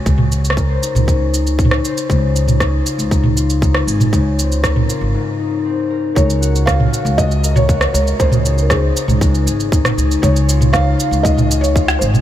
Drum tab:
SH |x---x-x-x---x-x-x---x-x-x---x-x-|x---x-x-x---x-x-x---x-x-x---x-x-|x---x-x-x---x-------------------|x-x-x-x-x---x-x-x-x-x-x-x-x-x-x-|
SD |-------r------------------r-----|--------r-----------------r-----|--------r-----------------------|--------r-----------------r-----|
T2 |--o-----------o----------o------|------o-----------o-----------o-|----------o---------------------|----------o-----------o---------|
BD |o-------o-------o-------o-------|o-------o-------o-------o-------|o-------o-----------------------|o-------o-------o-------o-------|

SH |x-x-x-x-x---x-x-x-x-x-x-x-x-x-x-|x-x-x-x-x---x-x-x-x-x-x-x-x-x-x-|
SD |--------r-----------------r-----|--------r-----------------r-----|
T2 |--o-----------o-----------o-----|------o-----------o-----------o-|
BD |o-------o-------o-------o-------|o-------o-------o-------o-------|